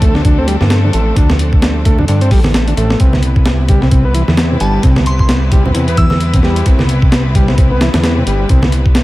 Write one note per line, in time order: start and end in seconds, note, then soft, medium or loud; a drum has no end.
0.00 0.56 D2 loud
0.00 2.96 F3 medium
0.00 2.96 A3 medium
0.00 0.14 A3 medium
0.00 2.96 C4 medium
0.00 2.96 D4 medium
0.00 2.96 A4 medium
0.00 kick loud
0.00 closed hi-hat medium
0.00 high conga medium
0.15 0.22 D3 loud
0.15 snare soft
0.25 0.38 D3 medium
0.25 kick loud
0.25 closed hi-hat medium
0.38 0.47 C4 medium
0.47 0.56 G3 loud
0.47 closed hi-hat medium
0.61 0.90 G2 loud
0.61 snare soft
0.61 high conga medium
0.70 snare loud
0.70 closed hi-hat medium
0.84 0.90 D3 medium
0.93 1.13 A1 loud
0.93 1.16 A3 medium
0.93 closed hi-hat medium
1.16 2.05 D2 loud
1.16 1.29 D3 medium
1.16 kick loud
1.16 closed hi-hat medium
1.30 snare medium
1.30 high conga medium
1.39 closed hi-hat medium
1.53 kick medium
1.62 snare loud
1.62 closed hi-hat medium
1.85 1.98 A3 medium
1.85 kick loud
1.85 closed hi-hat medium
1.85 high conga medium
1.99 2.05 D3 loud
1.99 low conga medium
2.08 2.33 G2 medium
2.08 2.21 D3 medium
2.08 closed hi-hat medium
2.21 2.30 C4 medium
2.21 closed hi-hat soft
2.31 2.74 A1 medium
2.31 2.40 G3 loud
2.31 kick loud
2.31 open hi-hat medium
2.44 snare medium
2.44 high conga medium
2.54 snare loud
2.54 closed hi-hat medium
2.68 2.74 D3 medium
2.68 closed hi-hat soft
2.77 2.96 A1 loud
2.77 2.99 A3 medium
2.77 closed hi-hat medium
2.90 snare medium
3.00 4.23 C2 loud
3.00 3.13 C3 medium
3.00 9.04 G3 medium
3.00 9.04 B3 medium
3.00 9.04 C4 medium
3.00 9.04 E4 medium
3.00 9.04 B4 medium
3.00 kick loud
3.00 closed hi-hat medium
3.13 snare soft
3.13 high conga medium
3.23 closed hi-hat medium
3.36 kick loud
3.46 snare loud
3.46 closed hi-hat medium
3.68 3.81 G3 medium
3.68 kick loud
3.68 closed hi-hat medium
3.68 high conga medium
3.82 3.88 C3 loud
3.82 snare soft
3.91 4.04 C3 medium
3.91 kick loud
3.91 closed hi-hat medium
4.05 4.14 B3 medium
4.14 4.23 E3 loud
4.14 closed hi-hat medium
4.28 4.57 E2 loud
4.28 snare soft
4.28 high conga loud
4.37 snare loud
4.37 closed hi-hat medium
4.51 4.57 C3 medium
4.60 4.79 G1 loud
4.60 4.83 G3 medium
4.60 4.74 A5 medium
4.60 closed hi-hat medium
4.83 5.71 C2 loud
4.83 4.96 C3 medium
4.83 kick loud
4.83 closed hi-hat medium
4.96 snare medium
4.96 high conga medium
5.06 5.15 C6 loud
5.06 closed hi-hat medium
5.19 5.26 C6 medium
5.19 kick medium
5.29 snare loud
5.29 closed hi-hat medium
5.52 5.64 G3 medium
5.52 kick medium
5.52 closed hi-hat medium
5.52 high conga medium
5.65 5.72 C3 loud
5.65 low conga medium
5.74 6.63 E2 medium
5.74 5.88 C3 medium
5.74 closed hi-hat medium
5.88 5.97 B3 medium
5.88 closed hi-hat soft
5.97 6.07 E3 loud
5.97 6.06 E6 loud
5.97 kick loud
5.97 closed hi-hat medium
6.10 6.17 E6 medium
6.10 snare soft
6.10 high conga medium
6.20 closed hi-hat medium
6.34 6.40 C3 medium
6.34 kick loud
6.34 closed hi-hat medium
6.43 6.66 G3 medium
6.43 snare soft
6.56 closed hi-hat medium
6.66 7.89 C2 medium
6.66 6.79 C3 medium
6.66 kick loud
6.66 closed hi-hat medium
6.79 snare soft
6.79 high conga medium
6.89 closed hi-hat medium
7.02 kick loud
7.12 snare loud
7.12 closed hi-hat medium
7.35 7.47 G3 medium
7.35 kick loud
7.35 closed hi-hat medium
7.35 high conga medium
7.48 7.55 C3 loud
7.48 snare soft
7.58 7.71 C3 medium
7.58 kick loud
7.58 closed hi-hat medium
7.71 7.80 B3 medium
7.81 7.89 E3 loud
7.81 snare loud
7.81 closed hi-hat medium
7.94 8.23 E2 loud
7.94 snare loud
7.94 closed hi-hat medium
7.94 high conga medium
8.04 snare loud
8.04 closed hi-hat medium
8.18 8.24 C3 medium
8.27 8.45 G1 loud
8.27 8.49 G3 medium
8.27 closed hi-hat medium
8.49 9.04 C2 loud
8.49 8.63 C3 medium
8.49 kick loud
8.49 closed hi-hat medium
8.62 snare medium
8.62 high conga loud
8.72 closed hi-hat medium
8.86 kick medium
8.95 snare loud
8.95 closed hi-hat medium